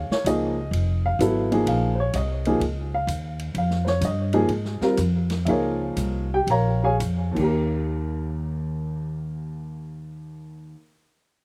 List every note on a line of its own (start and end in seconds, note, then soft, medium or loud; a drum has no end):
0.09 0.26 C#5 medium
0.09 muted upright bass stroke soft
0.09 snare medium
0.24 0.71 C#2 medium
0.24 0.54 F3 medium
0.24 0.54 A#3 medium
0.24 0.54 D#4 medium
0.24 0.54 G#4 medium
0.24 1.01 D#5 medium
0.24 hi-hat pedal medium
0.24 ride medium
0.71 1.17 F1 medium
0.71 ride medium
1.06 1.20 F5 medium
1.19 1.65 G#1 medium
1.19 1.48 F#3 medium
1.19 1.48 B3 medium
1.19 1.49 E4 medium
1.19 1.49 A4 medium
1.19 hi-hat pedal medium
1.19 ride medium
1.52 1.92 F3 medium
1.52 1.92 A#3 medium
1.52 1.92 D#4 medium
1.52 1.92 G#4 medium
1.52 ride soft
1.66 2.12 A#1 medium
1.66 1.98 F5 medium
1.66 ride medium
1.95 1.97 C5 medium
2.00 2.14 C#5 medium
2.13 2.59 C2 medium
2.13 2.89 D#5 medium
2.13 hi-hat pedal medium
2.13 ride medium
2.45 2.60 F3 medium
2.45 2.60 A#3 medium
2.45 2.60 D#4 medium
2.45 2.60 G#4 medium
2.45 ride soft
2.60 3.06 C#2 medium
2.60 ride medium
2.94 3.08 F5 medium
3.07 3.53 D#2 medium
3.07 hi-hat pedal soft
3.07 ride medium
3.39 ride medium
3.54 4.00 F2 medium
3.54 3.87 F5 medium
3.54 ride medium
3.71 snare soft
3.85 3.86 C5 medium
3.85 4.02 C#5 medium
3.85 snare soft
4.01 4.48 G2 medium
4.01 4.79 D#5 medium
4.01 hi-hat pedal soft
4.01 ride medium
4.33 4.48 F3 medium
4.33 4.48 A#3 medium
4.33 4.48 D#4 medium
4.33 4.48 G#4 medium
4.33 ride soft
4.49 4.79 G#2 medium
4.49 ride medium
4.65 snare soft
4.81 4.96 G3 medium
4.81 4.96 C4 medium
4.81 4.96 F4 medium
4.81 4.96 A#4 medium
4.81 4.92 F5 medium
4.81 muted upright bass stroke soft
4.81 snare soft
4.97 5.45 F2 medium
4.97 hi-hat pedal soft
4.97 ride medium
5.30 snare soft
5.30 ride soft
5.45 5.95 C#2 medium
5.45 6.24 F3 medium
5.45 6.24 A#3 medium
5.45 6.24 D#4 medium
5.45 6.25 G#4 medium
5.45 5.49 E5 medium
5.45 6.28 F5 medium
5.45 ride medium
5.50 6.28 F4 medium
5.50 6.28 A#4 medium
5.50 6.29 C#5 medium
5.96 6.46 C2 medium
5.96 hi-hat pedal medium
5.96 ride medium
6.34 6.49 G4 medium
6.34 6.49 G5 medium
6.47 6.98 A#1 medium
6.47 6.83 A#4 medium
6.47 6.83 A#5 medium
6.47 ride medium
6.51 6.83 C#5 medium
6.51 6.83 F5 medium
6.84 6.94 G#4 medium
6.84 6.95 C#5 medium
6.84 6.94 F5 medium
6.84 6.94 G#5 medium
7.00 7.35 F2 medium
7.00 hi-hat pedal medium
7.00 ride medium
7.32 10.73 D#2 medium
7.32 10.77 D#3 medium
7.36 10.74 D#2 medium
7.36 10.79 A#3 medium
7.36 kick medium
7.36 crash medium
7.41 10.82 G4 medium
7.41 10.85 A#4 medium